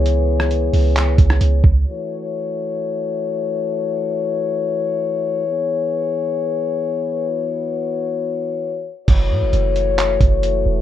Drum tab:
CC |----------------|----------------|----------------|----------------|
HH |x---x-o-x-x-x---|----------------|----------------|----------------|
CP |--------x-------|----------------|----------------|----------------|
SD |---r-------r----|----------------|----------------|----------------|
BD |----------o---o-|----------------|----------------|----------------|

CC |----------------|x---------------|
HH |----------------|x---x-x-x-x-x---|
CP |----------------|--------x-------|
SD |----------------|----------------|
BD |----------------|o---------o-----|